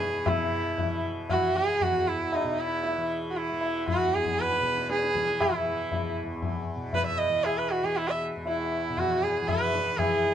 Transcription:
Already playing: tanpura E2 B2 E3, sarangi G#4
0.00 tabla te
0.26 tanpura B2, sarangi E4, tabla na, tabla ge
0.78 tanpura E3, tabla tin, tabla ge
1.29 sarangi F#4, tabla na, tabla ge
1.36 tanpura E3
1.55 sarangi G#4, tabla te
1.81 sarangi F#4, tabla tin, tabla ge
1.91 tanpura E2
2.08 sarangi E4
2.32 sarangi D#4, tabla na
2.44 tanpura B2
2.59 sarangi E4, tabla na
2.84 tabla tin
2.98 tanpura E3
3.30 sarangi F#4
3.35 sarangi E4, tabla tin
3.52 tanpura E3
3.61 tabla na
3.88 sarangi F#4, tabla na, tabla ge
4.07 tanpura E2
4.13 sarangi G#4, tabla te
4.25 tabla ge
4.38 sarangi B4, tabla te
4.51 tabla te
4.61 tanpura B2, tabla ke
4.77 tabla te
4.90 sarangi G#4, tabla te
5.03 tabla te
5.15 tanpura E3, tabla ke
5.29 tabla te
5.41 sarangi E4, tabla na, tabla ge
5.69 tanpura E3
5.92 tabla tin, tabla ge
6.17 tabla na
6.23 tanpura E2
6.42 tabla na, tabla ge
6.76 tanpura B2
6.93 sarangi B4, tabla tin, tabla ge
7.07 sarangi E5
7.18 sarangi D#5
7.29 tanpura E3
7.44 sarangi G#4, tabla na
7.58 sarangi B4
7.72 sarangi F#4
7.83 tanpura E3, sarangi G#4
7.95 sarangi E4, tabla tin
8.09 sarangi E5
8.36 tanpura E2
8.46 sarangi E4, tabla tin
8.72 tabla na
8.90 tanpura B2
8.97 sarangi F#4, tabla na, tabla ge
9.22 sarangi G#4, tabla te
9.42 tanpura E3
9.48 sarangi B4, tabla na, tabla ge
9.74 tabla te
9.96 tanpura E3, sarangi G#4, tabla na, tabla ge
10.24 tabla te

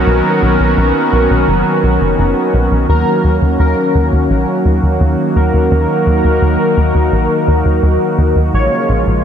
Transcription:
Already playing: analog synth pad D#3 F#3 B3 C#4 F#4, analog synth lead A#4
0.07 analog synth bass B1
0.42 analog synth bass B1
0.60 analog synth bass B1
0.77 analog synth bass B1
1.13 analog synth bass B1
1.30 analog synth bass B1
1.48 analog synth bass F#1
1.83 analog synth bass B1
2.01 analog synth bass F#1
2.19 analog synth bass F#1
2.54 analog synth bass B1
2.71 analog synth bass B1
2.89 analog synth bass D#2, analog synth pad D#3 F#3 A#3 C#4 F#4, analog synth lead A#4
3.24 analog synth bass D#2
3.42 analog synth bass D#2
3.59 analog synth bass D#2, analog synth lead A#4
3.95 analog synth bass D#2
4.13 analog synth bass D#2
4.30 analog synth bass A#1
4.65 analog synth bass D#2
4.83 analog synth bass D#2
5.01 analog synth bass D#2
5.36 analog synth bass D#2, analog synth lead A#4
5.54 analog synth bass D#2
5.71 analog synth bass D#2, analog synth pad D#4
6.07 analog synth bass D#2
6.24 analog synth bass D#2
6.42 analog synth bass D#2
6.77 analog synth bass D#2
6.95 analog synth bass D#2
7.12 analog synth bass A#1
7.48 analog synth bass D#2
7.65 analog synth bass D#2
7.83 analog synth bass D#2
8.18 analog synth bass D#2
8.36 analog synth bass D#2
8.54 analog synth bass A#1, analog synth pad C#3 F3 G#3 A#3 F4, analog synth lead C#5
8.89 analog synth bass A#1
9.07 analog synth bass A#1

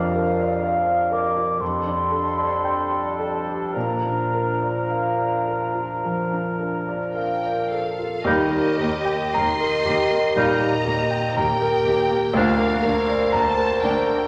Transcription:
Already playing: grand piano F2 D4, bassoon F3, clarinet D4, cor anglais A#4, flute F5
0.15 grand piano A#4
0.40 grand piano D5
0.64 grand piano F5
0.86 grand piano D5
1.12 grand piano A#4, flute D6
1.37 grand piano F4
1.59 grand piano F2, bassoon G3, clarinet D4, cor anglais A4, flute C6
1.87 grand piano D4
2.11 grand piano A4
2.38 grand piano D5
2.64 grand piano G5
2.91 grand piano D5
3.18 grand piano A4, flute A5
3.47 grand piano G4
3.73 grand piano A#2, bassoon F3, cor anglais A#4, flute A#5
4.05 grand piano D4
4.34 grand piano A#4
4.62 grand piano D5
4.89 grand piano F5
5.18 grand piano D5
5.48 grand piano A#4
5.75 grand piano F4
6.05 grand piano F3
6.33 grand piano D4
6.60 grand piano A#4
6.89 grand piano D5
7.13 flute A#4, violin section A#4 G5, grand piano F5
7.43 grand piano D5
7.69 flute A4, violin section A4 F5, grand piano A#4
7.99 grand piano F4
8.24 grand piano D#2, double bass section D#2, cello section D#2, bassoon G3, trombone section G3 A#3, viola section A#3 G4, clarinet D#4, flute G4, french horn section G4, violin section G4 D#5, cor anglais A#4
8.50 grand piano A#3
8.77 cello section D#2, double bass section D#2, grand piano A#4
8.82 viola section A#3 G4
9.05 grand piano G5
9.34 cello section D#2, double bass section D#2, viola section A#3 G4, french horn section D#4, violin section D#5 C6, flute D#5, grand piano A#5
9.60 grand piano A#4
9.85 cello section D#2, double bass section D#2, viola section A#3 G4, grand piano G4
10.10 grand piano A#3
10.35 cello section D#2, double bass section D#2, grand piano A#2, trombone section G3 A#3, bassoon G3, viola section A#3 G4, clarinet D#4, cor anglais A#4, violin section D#5 A#5, flute D#5
10.60 grand piano A#3
10.86 cello section D#2, double bass section D#2, viola section A#3 G4, grand piano A#4
11.11 grand piano G5
11.35 cello section D#2, double bass section D#2, viola section A#3 G4, french horn section G4, violin section A#4 G5, flute A#4, grand piano A#5
11.62 grand piano A#4
11.85 cello section D#2, double bass section D#2, viola section A#3 G4, grand piano G4
12.10 grand piano A#3
12.33 grand piano D2, cello section D2, double bass section D2, trombone section D3 A#3, bassoon F3, viola section A#3 D4, clarinet D4, french horn section A#4, violin section A#4 F5, cor anglais A#4, flute A#4
12.59 grand piano A#3
12.82 cello section D2, double bass section D2, viola section A#3 D4, grand piano A#4, french horn section C5
13.08 grand piano D5
13.33 cello section D2, double bass section D2, viola section A#3 D4, flute C5, violin section C5 A5, grand piano A#5
13.57 grand piano A#4
13.83 cello section D2, double bass section D2, viola section A#3 D4, grand piano D4, violin section A#4 G5, flute A#4
14.08 grand piano A#3

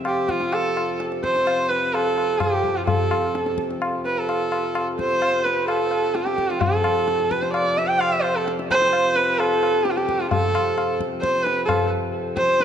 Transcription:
Already playing: harmonium F2 C3
0.05 sarangi G4, tabla na
0.29 sarangi F4, tabla ke
0.41 tabla te
0.52 sarangi A4, tabla na
0.77 tabla na
1.00 tabla te
1.12 tabla te
1.24 sarangi C5, tabla ke
1.36 tabla te
1.47 tabla na
1.70 sarangi B4, tabla te
1.94 sarangi A4, tabla na
2.18 tabla na
2.40 sarangi G4, tabla na, tabla ge
2.64 tabla ge
2.77 sarangi F4
2.87 sarangi A4, tabla tin, tabla ge
3.11 tabla na
3.35 tabla te
3.46 tabla te
3.58 tabla ke
3.71 tabla te
3.82 tabla na
4.05 sarangi B4, tabla te
4.18 sarangi A4
4.29 tabla na
4.52 tabla na
4.75 tabla na
4.99 sarangi C5, tabla ke
5.22 tabla na
5.45 sarangi B4, tabla te
5.68 sarangi A4, tabla na
5.91 tabla na
6.15 sarangi G4, tabla te
6.27 tabla te
6.38 tabla ke
6.50 sarangi F4, tabla te
6.61 harmonium F2 C3, sarangi A4, tabla tin, tabla ge
6.84 tabla na
7.08 tabla te
7.20 tabla te
7.31 sarangi B4, tabla ke
7.42 sarangi C5, tabla te
7.53 sarangi D5, tabla na
7.78 sarangi E5, tabla te
7.89 sarangi G5
8.00 sarangi F5, tabla na
8.12 sarangi E5
8.22 sarangi C5, tabla na
8.36 sarangi A4
8.48 tabla te
8.59 tabla te
8.71 sarangi C5, tabla ke
8.82 tabla te
8.93 tabla na
9.16 sarangi B4, tabla te
9.39 sarangi A4, tabla na
9.63 tabla na
9.85 sarangi G4, tabla te
9.91 sarangi F4
9.97 sarangi G4, tabla te
10.09 tabla ke
10.20 sarangi F4, tabla te
10.31 sarangi A4, tabla tin, tabla ge
10.55 tabla na
10.78 tabla na
11.01 tabla ke
11.22 sarangi C5, tabla ke
11.44 sarangi B4, tabla te
11.66 sarangi A4, tabla na, tabla ge
12.37 sarangi C5, tabla ke
12.60 tabla te

